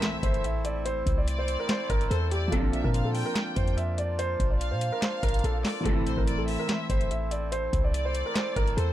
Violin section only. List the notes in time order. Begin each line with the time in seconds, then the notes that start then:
Already playing: E5
1.27 D5
2.11 C5
2.31 D5
2.73 E5
2.94 F5
3.15 G5
4.61 F5
5.65 D5
6.06 C5
6.27 D5
6.48 E5
7.94 D5
8.77 C5